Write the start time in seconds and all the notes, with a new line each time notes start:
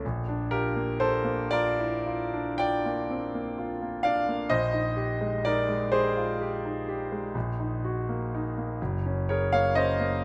0.05 A#1
0.28 D4
0.51 F4 G4 A#4
0.76 A#3
1.00 D4 A4 C5
1.24 A#3
1.51 F4 A#4 D5
1.79 E4
2.06 F4
2.33 D4
2.58 F4 D5 G5
2.85 A#3
3.10 C4
3.34 A#3
3.58 F4
3.82 A#3
4.03 D4 D5 F5
4.29 A#3
4.50 A#1 C5 D#5
4.73 D#4
4.97 G4
5.21 G#3
5.45 D#4 A#4 D5
5.68 G#3
5.92 G4 G#4 C5
6.16 F4
6.41 G4
6.65 D#4
6.88 G4
7.12 G#3
7.35 A#1
7.60 D#4
7.85 F#4
8.09 A#3
8.35 D#4
8.58 A#3
8.81 F#1
9.06 C#4
9.29 G#4 A#4 C#5
9.53 A#3 C#5 F5
9.75 C#4 C5 D#5
10.00 A#3